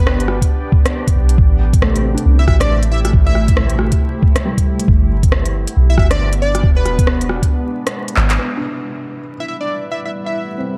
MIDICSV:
0, 0, Header, 1, 7, 480
1, 0, Start_track
1, 0, Key_signature, 0, "minor"
1, 0, Tempo, 437956
1, 1510, Time_signature, 4, 2, 24, 8
1, 11811, End_track
2, 0, Start_track
2, 0, Title_t, "Digital synth lead"
2, 0, Program_c, 0, 84
2, 0, Note_on_c, 0, 71, 97
2, 395, Note_off_c, 0, 71, 0
2, 2619, Note_on_c, 0, 76, 92
2, 2678, Note_off_c, 0, 76, 0
2, 2714, Note_on_c, 0, 76, 79
2, 2805, Note_off_c, 0, 76, 0
2, 2851, Note_on_c, 0, 74, 99
2, 3103, Note_off_c, 0, 74, 0
2, 3195, Note_on_c, 0, 76, 91
2, 3286, Note_off_c, 0, 76, 0
2, 3338, Note_on_c, 0, 76, 77
2, 3398, Note_off_c, 0, 76, 0
2, 3579, Note_on_c, 0, 76, 100
2, 4057, Note_off_c, 0, 76, 0
2, 6464, Note_on_c, 0, 76, 96
2, 6521, Note_off_c, 0, 76, 0
2, 6568, Note_on_c, 0, 76, 75
2, 6652, Note_off_c, 0, 76, 0
2, 6696, Note_on_c, 0, 74, 98
2, 6945, Note_off_c, 0, 74, 0
2, 7036, Note_on_c, 0, 74, 97
2, 7331, Note_off_c, 0, 74, 0
2, 7415, Note_on_c, 0, 71, 95
2, 8077, Note_off_c, 0, 71, 0
2, 10303, Note_on_c, 0, 76, 82
2, 10360, Note_off_c, 0, 76, 0
2, 10393, Note_on_c, 0, 76, 70
2, 10485, Note_off_c, 0, 76, 0
2, 10528, Note_on_c, 0, 74, 89
2, 10782, Note_off_c, 0, 74, 0
2, 10867, Note_on_c, 0, 76, 83
2, 10962, Note_off_c, 0, 76, 0
2, 11020, Note_on_c, 0, 76, 68
2, 11079, Note_off_c, 0, 76, 0
2, 11249, Note_on_c, 0, 76, 88
2, 11733, Note_off_c, 0, 76, 0
2, 11811, End_track
3, 0, Start_track
3, 0, Title_t, "Synth texture"
3, 0, Program_c, 1, 99
3, 9184, Note_on_c, 1, 59, 82
3, 9186, Note_on_c, 1, 71, 80
3, 11811, Note_off_c, 1, 59, 0
3, 11811, Note_off_c, 1, 71, 0
3, 11811, End_track
4, 0, Start_track
4, 0, Title_t, "Ambient pad"
4, 0, Program_c, 2, 92
4, 0, Note_on_c, 2, 59, 72
4, 0, Note_on_c, 2, 62, 86
4, 0, Note_on_c, 2, 67, 84
4, 0, Note_on_c, 2, 74, 75
4, 0, Note_on_c, 2, 79, 72
4, 1506, Note_on_c, 2, 57, 92
4, 1509, Note_off_c, 2, 59, 0
4, 1632, Note_on_c, 2, 64, 75
4, 2470, Note_off_c, 2, 62, 0
4, 2471, Note_on_c, 2, 72, 80
4, 3065, Note_off_c, 2, 74, 0
4, 5348, Note_off_c, 2, 57, 0
4, 5351, Note_off_c, 2, 72, 0
4, 5352, Note_on_c, 2, 59, 83
4, 5810, Note_on_c, 2, 62, 75
4, 6127, Note_off_c, 2, 64, 0
4, 6249, Note_on_c, 2, 74, 82
4, 7268, Note_off_c, 2, 67, 0
4, 7269, Note_off_c, 2, 79, 0
4, 7277, Note_on_c, 2, 56, 80
4, 7765, Note_on_c, 2, 64, 92
4, 8049, Note_off_c, 2, 62, 0
4, 8056, Note_off_c, 2, 74, 0
4, 8153, Note_on_c, 2, 71, 86
4, 8154, Note_on_c, 2, 76, 72
4, 9191, Note_off_c, 2, 59, 0
4, 9194, Note_off_c, 2, 56, 0
4, 9195, Note_on_c, 2, 55, 70
4, 9654, Note_on_c, 2, 57, 84
4, 10048, Note_on_c, 2, 69, 87
4, 10746, Note_off_c, 2, 71, 0
4, 11811, Note_off_c, 2, 55, 0
4, 11811, Note_off_c, 2, 57, 0
4, 11811, Note_off_c, 2, 64, 0
4, 11811, Note_off_c, 2, 69, 0
4, 11811, Note_off_c, 2, 76, 0
4, 11811, End_track
5, 0, Start_track
5, 0, Title_t, "Felt piano"
5, 0, Program_c, 3, 0
5, 1706, Control_c, 3, 64, 127
5, 1992, Note_on_c, 3, 57, 69
5, 2202, Note_on_c, 3, 60, 58
5, 2350, Note_on_c, 3, 62, 57
5, 2875, Note_off_c, 3, 57, 0
5, 3036, Note_off_c, 3, 60, 0
5, 3174, Note_off_c, 3, 62, 0
5, 3910, Note_on_c, 3, 57, 62
5, 4794, Note_off_c, 3, 57, 0
5, 4875, Note_on_c, 3, 55, 58
5, 5366, Control_c, 3, 64, 0
5, 5549, Note_off_c, 3, 55, 0
5, 9191, Note_on_c, 3, 59, 58
5, 9396, Note_on_c, 3, 62, 47
5, 9406, Control_c, 3, 64, 127
5, 10075, Note_off_c, 3, 59, 0
5, 10233, Note_off_c, 3, 62, 0
5, 11595, Note_on_c, 3, 60, 47
5, 11811, Note_off_c, 3, 60, 0
5, 11811, End_track
6, 0, Start_track
6, 0, Title_t, "808-style bass"
6, 0, Program_c, 4, 38
6, 0, Note_on_c, 4, 31, 97
6, 436, Note_off_c, 4, 31, 0
6, 1268, Note_on_c, 4, 35, 97
6, 1494, Note_off_c, 4, 35, 0
6, 1515, Note_on_c, 4, 33, 98
6, 2359, Note_off_c, 4, 33, 0
6, 2473, Note_on_c, 4, 36, 78
6, 2697, Note_off_c, 4, 36, 0
6, 2713, Note_on_c, 4, 33, 105
6, 3420, Note_off_c, 4, 33, 0
6, 3435, Note_on_c, 4, 33, 99
6, 4279, Note_off_c, 4, 33, 0
6, 5348, Note_on_c, 4, 31, 100
6, 6196, Note_off_c, 4, 31, 0
6, 6320, Note_on_c, 4, 35, 78
6, 6540, Note_off_c, 4, 35, 0
6, 6551, Note_on_c, 4, 31, 104
6, 7259, Note_off_c, 4, 31, 0
6, 7272, Note_on_c, 4, 28, 96
6, 8118, Note_off_c, 4, 28, 0
6, 8954, Note_on_c, 4, 32, 101
6, 9177, Note_off_c, 4, 32, 0
6, 11811, End_track
7, 0, Start_track
7, 0, Title_t, "Drums"
7, 74, Note_on_c, 9, 37, 118
7, 183, Note_off_c, 9, 37, 0
7, 220, Note_on_c, 9, 42, 32
7, 309, Note_on_c, 9, 37, 60
7, 330, Note_off_c, 9, 42, 0
7, 418, Note_off_c, 9, 37, 0
7, 456, Note_on_c, 9, 36, 65
7, 463, Note_on_c, 9, 42, 56
7, 565, Note_off_c, 9, 36, 0
7, 573, Note_off_c, 9, 42, 0
7, 791, Note_on_c, 9, 36, 116
7, 901, Note_off_c, 9, 36, 0
7, 938, Note_on_c, 9, 37, 107
7, 938, Note_on_c, 9, 42, 55
7, 1047, Note_off_c, 9, 37, 0
7, 1047, Note_off_c, 9, 42, 0
7, 1177, Note_on_c, 9, 36, 66
7, 1181, Note_on_c, 9, 42, 46
7, 1287, Note_off_c, 9, 36, 0
7, 1290, Note_off_c, 9, 42, 0
7, 1416, Note_on_c, 9, 42, 55
7, 1513, Note_on_c, 9, 36, 119
7, 1526, Note_off_c, 9, 42, 0
7, 1623, Note_off_c, 9, 36, 0
7, 1899, Note_on_c, 9, 36, 102
7, 1902, Note_on_c, 9, 42, 56
7, 1996, Note_on_c, 9, 37, 110
7, 2009, Note_off_c, 9, 36, 0
7, 2012, Note_off_c, 9, 42, 0
7, 2106, Note_off_c, 9, 37, 0
7, 2144, Note_on_c, 9, 42, 31
7, 2253, Note_off_c, 9, 42, 0
7, 2385, Note_on_c, 9, 42, 54
7, 2495, Note_off_c, 9, 42, 0
7, 2714, Note_on_c, 9, 36, 108
7, 2714, Note_on_c, 9, 37, 63
7, 2823, Note_off_c, 9, 37, 0
7, 2824, Note_off_c, 9, 36, 0
7, 2857, Note_on_c, 9, 37, 110
7, 2857, Note_on_c, 9, 42, 54
7, 2967, Note_off_c, 9, 37, 0
7, 2967, Note_off_c, 9, 42, 0
7, 3098, Note_on_c, 9, 42, 45
7, 3207, Note_off_c, 9, 42, 0
7, 3341, Note_on_c, 9, 37, 50
7, 3341, Note_on_c, 9, 42, 53
7, 3435, Note_on_c, 9, 36, 116
7, 3451, Note_off_c, 9, 37, 0
7, 3451, Note_off_c, 9, 42, 0
7, 3544, Note_off_c, 9, 36, 0
7, 3673, Note_on_c, 9, 37, 38
7, 3783, Note_off_c, 9, 37, 0
7, 3817, Note_on_c, 9, 42, 56
7, 3818, Note_on_c, 9, 36, 104
7, 3910, Note_on_c, 9, 37, 109
7, 3926, Note_off_c, 9, 42, 0
7, 3928, Note_off_c, 9, 36, 0
7, 4020, Note_off_c, 9, 37, 0
7, 4050, Note_on_c, 9, 42, 30
7, 4151, Note_on_c, 9, 37, 62
7, 4160, Note_off_c, 9, 42, 0
7, 4261, Note_off_c, 9, 37, 0
7, 4294, Note_on_c, 9, 42, 53
7, 4297, Note_on_c, 9, 36, 63
7, 4404, Note_off_c, 9, 42, 0
7, 4407, Note_off_c, 9, 36, 0
7, 4630, Note_on_c, 9, 36, 108
7, 4740, Note_off_c, 9, 36, 0
7, 4775, Note_on_c, 9, 37, 104
7, 4775, Note_on_c, 9, 42, 56
7, 4884, Note_off_c, 9, 37, 0
7, 4884, Note_off_c, 9, 42, 0
7, 5015, Note_on_c, 9, 36, 61
7, 5020, Note_on_c, 9, 42, 46
7, 5124, Note_off_c, 9, 36, 0
7, 5129, Note_off_c, 9, 42, 0
7, 5256, Note_on_c, 9, 42, 57
7, 5349, Note_on_c, 9, 36, 116
7, 5365, Note_off_c, 9, 42, 0
7, 5459, Note_off_c, 9, 36, 0
7, 5734, Note_on_c, 9, 36, 102
7, 5736, Note_on_c, 9, 42, 55
7, 5831, Note_on_c, 9, 37, 107
7, 5843, Note_off_c, 9, 36, 0
7, 5845, Note_off_c, 9, 42, 0
7, 5940, Note_off_c, 9, 37, 0
7, 5979, Note_on_c, 9, 42, 33
7, 6089, Note_off_c, 9, 42, 0
7, 6220, Note_on_c, 9, 42, 57
7, 6329, Note_off_c, 9, 42, 0
7, 6550, Note_on_c, 9, 37, 70
7, 6551, Note_on_c, 9, 36, 103
7, 6659, Note_off_c, 9, 37, 0
7, 6660, Note_off_c, 9, 36, 0
7, 6693, Note_on_c, 9, 37, 97
7, 6693, Note_on_c, 9, 42, 55
7, 6803, Note_off_c, 9, 37, 0
7, 6803, Note_off_c, 9, 42, 0
7, 6934, Note_on_c, 9, 42, 44
7, 7044, Note_off_c, 9, 42, 0
7, 7177, Note_on_c, 9, 37, 54
7, 7177, Note_on_c, 9, 42, 54
7, 7272, Note_on_c, 9, 36, 112
7, 7286, Note_off_c, 9, 37, 0
7, 7286, Note_off_c, 9, 42, 0
7, 7382, Note_off_c, 9, 36, 0
7, 7514, Note_on_c, 9, 37, 39
7, 7514, Note_on_c, 9, 42, 32
7, 7623, Note_off_c, 9, 37, 0
7, 7623, Note_off_c, 9, 42, 0
7, 7657, Note_on_c, 9, 36, 104
7, 7660, Note_on_c, 9, 42, 56
7, 7751, Note_on_c, 9, 37, 107
7, 7767, Note_off_c, 9, 36, 0
7, 7769, Note_off_c, 9, 42, 0
7, 7860, Note_off_c, 9, 37, 0
7, 7904, Note_on_c, 9, 42, 34
7, 7995, Note_on_c, 9, 37, 62
7, 8013, Note_off_c, 9, 42, 0
7, 8104, Note_off_c, 9, 37, 0
7, 8138, Note_on_c, 9, 36, 61
7, 8142, Note_on_c, 9, 42, 57
7, 8247, Note_off_c, 9, 36, 0
7, 8251, Note_off_c, 9, 42, 0
7, 8622, Note_on_c, 9, 37, 98
7, 8622, Note_on_c, 9, 42, 58
7, 8731, Note_off_c, 9, 37, 0
7, 8731, Note_off_c, 9, 42, 0
7, 8857, Note_on_c, 9, 42, 47
7, 8947, Note_on_c, 9, 39, 85
7, 8967, Note_off_c, 9, 42, 0
7, 9056, Note_off_c, 9, 39, 0
7, 9096, Note_on_c, 9, 39, 97
7, 9096, Note_on_c, 9, 42, 58
7, 9206, Note_off_c, 9, 39, 0
7, 9206, Note_off_c, 9, 42, 0
7, 11811, End_track
0, 0, End_of_file